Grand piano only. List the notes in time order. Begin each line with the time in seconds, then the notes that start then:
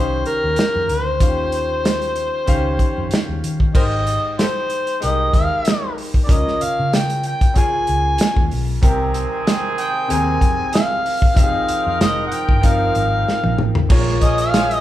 Already playing: D#3 C#4 G4 C5 C#5 F5
1.20 D#3 C#4 F4 C5 F5
1.28 G4
2.46 D#3 C#4 G4 C5 F5
3.74 G#3 D#4 G4 C5
5.00 G#3 D#4 G4 A#4
6.27 C#3 C#4 F4 A#4
7.54 C#3 C#4 F4 G#4
8.81 C3 C4 G4 A#4
10.08 C3 C4 G#4 A#4
11.34 F3 C4 D#4 G4
11.44 G#4
12.61 F3 C4 D#4 A#4
13.89 A#3 F4 G#4 C#5